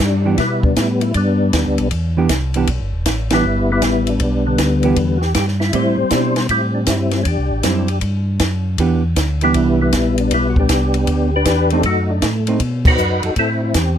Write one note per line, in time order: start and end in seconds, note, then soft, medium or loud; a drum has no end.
0.00 0.37 G2 medium
0.00 0.35 G3 medium
0.00 0.23 D4 medium
0.00 kick soft
0.00 snare medium
0.24 0.37 E3 medium
0.24 0.37 B3 medium
0.24 0.37 D4 medium
0.24 0.38 D4 medium
0.24 0.38 G4 medium
0.38 0.75 B2 medium
0.38 1.12 G3 medium
0.38 1.12 B3 medium
0.38 0.64 E4 medium
0.38 kick soft
0.38 snare soft
0.38 ride medium
0.63 0.77 D4 medium
0.63 kick medium
0.76 1.14 A2 medium
0.76 0.89 E4 medium
0.76 kick soft
0.76 snare medium
0.76 hi-hat pedal medium
0.76 ride medium
1.01 1.14 E4 medium
1.01 ride medium
1.14 1.52 G2 medium
1.14 1.88 G3 medium
1.14 1.89 B3 medium
1.14 1.87 D4 medium
1.14 kick soft
1.14 ride medium
1.53 1.65 D#2 medium
1.53 kick soft
1.53 snare medium
1.53 hi-hat pedal medium
1.53 ride medium
1.67 1.79 D2 medium
1.78 1.91 B1 medium
1.78 ride soft
1.91 2.28 E2 medium
1.91 kick soft
1.91 ride medium
2.17 2.29 E3 medium
2.17 2.29 B3 medium
2.17 2.29 D4 medium
2.17 2.29 G4 medium
2.29 2.67 C2 medium
2.29 kick soft
2.29 snare medium
2.29 hi-hat pedal medium
2.29 ride medium
2.54 2.67 E3 medium
2.54 2.67 B3 medium
2.54 2.67 D4 medium
2.54 2.68 G4 medium
2.54 ride soft
2.67 2.80 B1 medium
2.67 kick soft
2.67 ride medium
2.81 2.93 G1 medium
2.94 3.05 E1 medium
3.06 3.43 A1 medium
3.06 kick soft
3.06 snare medium
3.06 hi-hat pedal medium
3.06 ride medium
3.30 3.43 E3 medium
3.30 3.43 B3 medium
3.30 3.71 B3 medium
3.30 3.43 D4 medium
3.30 3.71 E4 medium
3.30 3.44 G4 medium
3.30 snare medium
3.30 ride medium
3.35 3.71 G3 medium
3.44 3.81 G1 medium
3.72 4.22 G3 medium
3.72 4.22 B3 medium
3.72 4.10 E4 loud
3.82 4.19 A1 medium
3.82 kick soft
3.82 snare medium
3.82 hi-hat pedal medium
3.82 ride medium
4.07 4.21 D4 medium
4.07 ride soft
4.20 4.57 B1 medium
4.20 4.47 G3 medium
4.20 4.46 B3 medium
4.20 4.47 D4 medium
4.20 kick soft
4.20 ride medium
4.47 5.19 D3 medium
4.47 5.19 G3 medium
4.47 5.18 B3 medium
4.58 4.95 D2 medium
4.58 kick soft
4.58 snare medium
4.58 hi-hat pedal medium
4.58 ride medium
4.83 4.96 E3 medium
4.83 4.96 B3 medium
4.83 4.96 D4 medium
4.83 4.96 G4 medium
4.83 ride soft
4.96 5.34 E2 medium
4.96 kick soft
4.96 ride medium
5.17 5.23 F#4 medium
5.21 5.34 G4 loud
5.21 snare soft
5.34 5.72 G2 medium
5.34 5.46 G4 medium
5.34 kick soft
5.34 snare medium
5.34 hi-hat pedal medium
5.34 ride medium
5.48 snare soft
5.60 5.72 E4 medium
5.60 snare soft
5.73 5.96 A2 medium
5.73 5.96 G3 medium
5.73 6.47 G3 medium
5.73 5.96 C4 medium
5.73 5.97 E4 medium
5.73 5.96 E4 medium
5.73 6.47 C5 medium
5.73 kick soft
5.73 ride medium
5.98 6.04 A2 soft
5.98 6.12 C4 medium
6.11 6.48 B2 medium
6.11 6.34 G3 medium
6.11 6.34 C4 medium
6.11 6.35 D4 medium
6.11 6.34 E4 medium
6.11 kick soft
6.11 snare medium
6.11 hi-hat pedal medium
6.11 ride medium
6.36 6.43 D4 medium
6.36 snare medium
6.36 ride soft
6.49 6.86 A2 medium
6.49 7.23 G3 medium
6.49 7.23 C4 medium
6.49 6.62 E4 medium
6.49 kick soft
6.49 ride medium
6.75 6.81 D4 medium
6.86 7.24 G2 medium
6.86 7.12 E4 medium
6.86 kick soft
6.86 snare medium
6.86 hi-hat pedal medium
6.86 ride medium
7.11 7.21 E4 medium
7.11 snare soft
7.11 ride soft
7.23 7.38 E2 medium
7.23 7.27 C#4 medium
7.23 7.99 D4 medium
7.23 kick soft
7.23 ride medium
7.28 7.99 G4 medium
7.38 7.51 C2 medium
7.51 7.63 A1 medium
7.63 8.01 F#2 medium
7.63 7.86 G3 medium
7.63 7.87 C4 medium
7.63 7.87 E4 medium
7.63 kick soft
7.63 snare medium
7.63 hi-hat pedal medium
7.63 ride medium
7.88 ride soft
8.01 8.39 G2 medium
8.01 kick soft
8.01 ride medium
8.39 8.77 F#2 medium
8.39 kick soft
8.39 snare medium
8.39 hi-hat pedal medium
8.39 ride medium
8.78 9.15 E2 medium
8.78 9.01 E3 medium
8.78 9.02 B3 medium
8.78 9.02 D4 medium
8.78 9.02 G4 medium
8.78 kick soft
8.78 ride medium
9.16 9.54 D2 medium
9.16 kick soft
9.16 snare medium
9.16 hi-hat pedal medium
9.16 ride medium
9.41 9.91 E3 medium
9.41 9.81 G3 medium
9.41 9.91 B3 medium
9.41 9.81 B3 medium
9.41 9.91 D4 medium
9.41 9.80 E4 medium
9.41 9.91 G4 medium
9.41 ride soft
9.54 9.92 C2 medium
9.54 kick soft
9.54 ride medium
9.81 10.33 G3 medium
9.81 10.33 B3 medium
9.81 10.16 E4 medium
9.93 10.30 A#1 medium
9.93 kick soft
9.93 snare medium
9.93 hi-hat pedal medium
9.93 ride medium
10.18 10.33 D4 medium
10.18 ride soft
10.31 10.68 B1 medium
10.31 11.05 G3 medium
10.31 10.59 B3 medium
10.31 10.47 E4 medium
10.31 kick soft
10.31 ride medium
10.50 10.58 F#4 medium
10.56 11.31 B3 medium
10.56 11.30 D4 medium
10.56 11.35 G4 medium
10.56 kick medium
10.69 11.06 C2 medium
10.69 kick soft
10.69 snare medium
10.69 hi-hat pedal medium
10.69 ride medium
10.94 ride medium
11.07 11.45 D2 medium
11.07 kick soft
11.07 ride medium
11.36 11.82 D4 medium
11.36 11.82 G4 medium
11.36 11.70 B4 loud
11.45 11.83 E2 medium
11.45 kick soft
11.45 snare medium
11.45 hi-hat pedal medium
11.45 ride medium
11.70 11.83 A3 medium
11.70 11.84 C4 medium
11.70 11.84 D#4 medium
11.70 11.86 A4 medium
11.70 ride soft
11.83 12.21 F#2 medium
11.83 12.57 A3 medium
11.83 12.23 D#4 medium
11.83 12.11 F#4 medium
11.83 kick soft
11.83 ride medium
12.11 12.23 D4 medium
12.22 12.59 A2 medium
12.22 12.35 D#4 medium
12.22 kick soft
12.22 snare medium
12.22 hi-hat pedal medium
12.22 ride medium
12.47 12.59 A3 medium
12.47 12.60 C4 medium
12.47 12.60 D#4 medium
12.47 ride soft
12.60 12.97 B2 medium
12.60 kick soft
12.60 ride medium
12.85 13.34 D#4 medium
12.85 13.34 F#4 medium
12.85 13.22 B4 loud
12.85 kick medium
12.85 crash medium
12.98 13.22 F#2 medium
12.98 hi-hat pedal medium
13.23 13.30 F#2 soft
13.23 13.31 A4 medium
13.23 ride soft
13.36 13.74 A2 medium
13.36 13.98 C4 medium
13.36 13.62 E4 medium
13.36 13.50 A4 loud
13.36 kick soft
13.36 ride medium
13.63 13.75 E4 medium
13.74 13.98 E2 medium
13.74 13.98 G4 medium
13.74 kick soft
13.74 snare medium
13.74 hi-hat pedal medium
13.74 ride medium